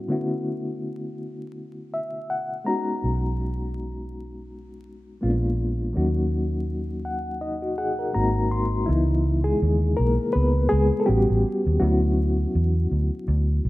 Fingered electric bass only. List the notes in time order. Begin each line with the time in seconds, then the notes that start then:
3.04 B1
5.24 A#1
5.97 D#2
8.16 G#1
8.89 C#2
9.62 D#2
9.99 B1
10.35 C#2
10.72 C#2
11.09 A1
11.30 A1
11.66 D#2
11.82 D2
12.55 E2
12.91 D2
13.28 D2
13.65 B1